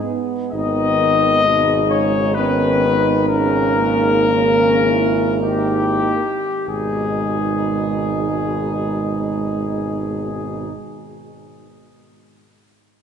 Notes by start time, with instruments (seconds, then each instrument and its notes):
Already playing: tuba G#2, trombone G#3
0.02 french horn section B3
0.52 tuba G#1, trombone D#3, euphonium B3, french horn section D#4, trumpet section D#5
1.43 trombone B2, euphonium G#3, french horn section D#4
1.87 trombone C#3, trumpet section C#5
2.35 trombone D#3, euphonium B3, french horn section C#4, trumpet section B4
2.86 french horn section D#4
3.28 trombone C#3, euphonium C#4, trumpet section A#4
3.32 french horn section D#4
3.78 euphonium A#3
4.28 trombone C#3, french horn section C#4
4.83 french horn section E4
5.40 trombone D#3, euphonium A#3, french horn section D#4, trumpet section G4
6.66 tuba G#1, trombone B2, euphonium G#3, french horn section D#4, trumpet section G#4